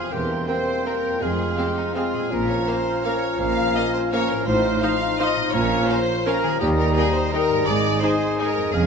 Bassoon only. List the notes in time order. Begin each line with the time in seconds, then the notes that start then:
Already playing: F3
0.11 A#3
0.48 A#3
0.86 A#3
1.21 G#3
1.96 G#3
2.31 F3
3.04 F3
3.39 F3
4.12 F3
4.47 F3
4.82 F3
5.19 F3
5.54 F3
6.26 F3
6.61 G3
7.33 G3
7.68 G#3
8.02 G#3
8.74 G#3